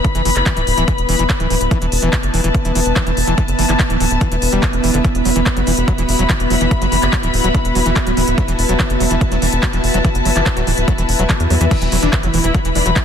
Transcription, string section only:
Already playing: E4 B4 E5 B5
1.87 A5
5.20 B5
8.53 A5
11.87 B5

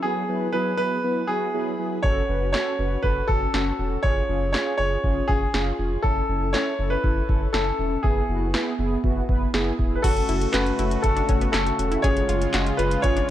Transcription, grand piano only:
0.02 G#4
0.53 B4
0.77 B4
1.27 G#4
2.03 C#5
2.53 C#5
3.03 B4
3.28 A4
4.03 C#5
4.53 C#5
4.78 C#5
5.28 G#4
6.03 A4
6.53 C#5
6.90 B4
7.53 A4
8.03 G#4
9.95 B4
10.02 A4
10.52 B4
11.02 A4
11.52 A4
12.02 C#5
12.77 B4
13.02 C#5

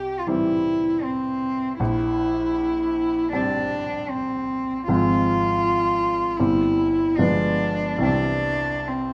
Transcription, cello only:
Already playing: G4
0.19 F4
0.27 E4
1.04 C4
1.80 E4
3.32 D4
4.10 C4
4.88 F4
6.37 E4
7.17 D4
8.02 D4
8.88 C4

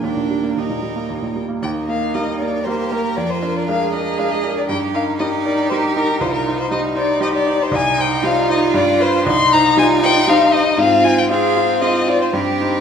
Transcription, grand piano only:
0.03 D#2
0.16 A#2
0.30 G3
0.43 A#3
0.56 D#2
0.70 A#2
0.83 G3
0.96 A#3
1.09 D#2
1.22 A#2
1.36 G3
1.49 A#3
1.62 D#2
1.88 A#3 A#4
2.15 G3 A#3 A#4
2.41 A#3 A#4
2.67 G3 A#3 A#4
2.92 A#3 A#4
3.17 F2
3.42 D4 A#4
3.68 G#3 D4 A#4
3.93 D4 A#4
4.18 G#3 D4 A#4
4.44 D4 A#4
4.69 G2
4.94 D#4 A#4
5.20 G3 D#4 A#4
5.45 D#4 A#4
5.71 G3 D#4 A#4
5.96 D#4 A#4
6.21 C2
6.46 D#4 C5
6.71 G3 D#4 C5
6.95 D#4 C5
7.21 G3 D#4 C5
7.46 D#4 C5
7.71 C2
7.98 D#4 C5
8.23 G3 D#4 C5
8.49 D#4 C5
8.74 G2
9.00 F4 B4
9.26 C2
9.52 D#4 C5
9.77 G3 D#4 C5
10.02 D#4 C5
10.27 G3 D#4 C5
10.53 D#4 C5
10.77 G#2
11.04 F4 C5
11.30 C4 F4 C5
11.56 F4 C5
11.81 C4 F4 C5
12.08 F4 C5
12.33 G2
12.60 D#4 C5

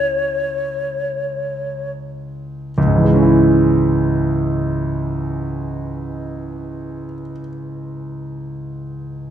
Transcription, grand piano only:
Already playing: C#2 G#3 C#4 E4
2.78 C#2
2.86 G#2
2.96 E3
3.04 G#3
3.13 C#4
3.22 E4

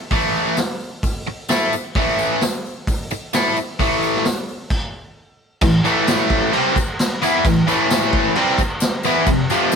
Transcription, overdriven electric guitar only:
0.11 A2 E3 A3
1.27 muted overdriven electric guitar stroke
1.49 A3 E4 A4
1.73 muted overdriven electric guitar stroke
1.96 A2 E3 A3
3.12 muted overdriven electric guitar stroke
3.34 A3 E4 A4
3.57 muted overdriven electric guitar stroke
3.79 A2 E3 A3
5.62 A2 E3
5.84 A2 E3 A3
6.53 C3 G3 C4
7.22 E3 B3 E4
7.44 A2 E3
7.67 A2 E3 A3
8.36 C3 G3 C4
9.05 E3 B3 E4
9.28 F2 C3
9.50 F2 C3 F3

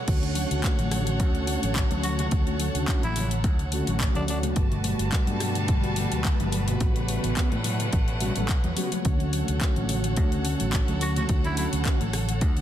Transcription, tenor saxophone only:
2.04 F#4
2.19 F#4
3.04 E4
4.16 D4
4.29 D4
11.02 F#4
11.18 F#4
11.45 E4
11.58 E4

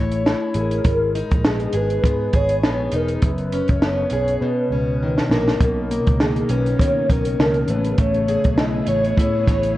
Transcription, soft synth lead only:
Already playing: C#5
0.57 A#4
1.46 G#4
1.76 B4
2.35 C#5
2.96 A#4
3.25 B4
3.71 C#5
3.83 C#5
4.41 B4
5.33 A#4
6.20 G#4
6.50 B4
6.80 C#5
7.10 A#4
7.70 B4
8.00 C#5
8.59 D#5
8.88 C#5
9.18 C#5

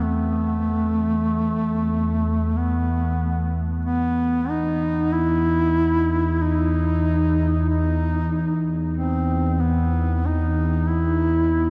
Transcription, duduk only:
0.02 A3
2.57 B3
3.85 B3
4.49 D#4
5.13 E4
6.42 D#4
7.69 D#4
8.97 C4
9.61 B3
10.26 D#4
10.89 E4

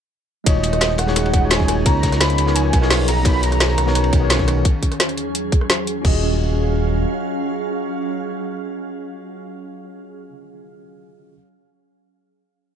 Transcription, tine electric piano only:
0.44 G#3 D#4 F4 F#4
0.48 C#5
1.07 G#3 D#4 F#4 G#4 C#5
1.41 G#3 D#4 F4 F#4
1.45 C#5
1.84 B3 D#4 F4 A#4
1.88 C#5
2.46 B3 D#4 F4 A#4 C#5
2.81 B3 D#4 F4 A#4 C#5
3.23 B3 D#4 F#4 A#4
3.27 C#5
3.86 B3 D#4 F#4 A#4 C#5
4.20 B3 D#4 F#4 A#4
4.24 C#5
6.02 C#4 F4 F#4
6.06 G#4 D#5

